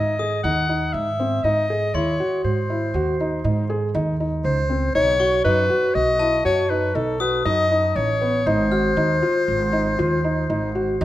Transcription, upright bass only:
0.00 0.41 G#2 medium
0.44 0.90 D#2 loud
0.94 1.40 G#2 loud
1.44 1.91 G#2 medium
1.94 2.18 D#2 loud
2.44 2.91 G#2 medium
2.94 3.41 D#2 loud
3.44 3.91 G#2 loud
3.95 4.41 D#2 loud
4.44 4.91 C#2 loud
4.95 5.41 B1 loud
5.45 5.68 F#2 loud
5.95 6.41 B1 loud
6.45 6.91 F#2 loud
6.95 7.42 B1 loud
7.45 7.92 F#2 loud
7.96 8.42 A1 loud
8.46 8.93 G#1 loud
8.97 9.20 D#2 loud
9.48 9.95 G#1 loud
9.99 10.46 D#2 loud
10.50 10.97 G#1 loud
11.01 11.05 D#2 loud

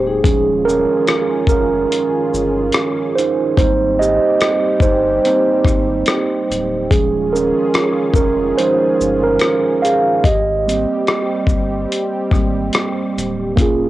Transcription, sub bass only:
0.00 0.21 D1 loud
0.25 0.86 D#1 loud
1.47 1.86 F1 medium
2.33 2.71 G1 medium
3.58 4.19 G#1 loud
4.81 5.20 G1 medium
5.65 6.04 G#1 medium
6.50 6.88 D1 loud
6.91 7.53 D#1 loud
8.14 8.53 F1 medium
9.00 9.38 G1 medium
10.24 10.86 G#1 loud
11.48 11.86 G1 medium
12.32 12.70 G#1 medium
13.17 13.55 D1 medium
13.58 13.89 D#1 loud

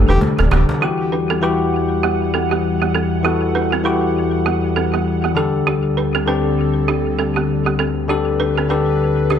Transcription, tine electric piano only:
0.00 0.84 D3 medium
0.00 0.84 D4 medium
0.00 0.83 G4 medium
0.00 0.84 A4 medium
0.00 0.84 C5 medium
0.80 1.29 E3 medium
0.80 1.30 E4 medium
0.80 1.30 F#4 medium
0.80 1.31 G4 loud
1.41 2.34 E3 medium
1.41 2.34 E4 medium
1.41 2.34 F#4 medium
1.41 2.35 G4 loud
3.23 3.72 E3 medium
3.23 3.72 E4 medium
3.23 3.73 F#4 medium
3.23 3.73 A4 loud
3.83 4.76 E3 medium
3.83 4.76 E4 medium
3.83 4.77 F#4 medium
3.83 4.77 G4 medium
5.35 6.10 D3 medium
5.35 6.11 D4 medium
5.35 6.11 G4 medium
5.35 6.11 A4 medium
6.26 7.19 D3 medium
6.26 7.20 C4 loud
6.26 7.19 D4 medium
6.26 7.20 G4 medium
8.08 8.57 D3 medium
8.08 8.57 D4 medium
8.08 8.57 G4 medium
8.08 8.58 A4 loud
8.69 9.39 D3 medium
8.69 9.39 D4 medium
8.69 9.39 G4 medium
8.69 9.39 A4 loud

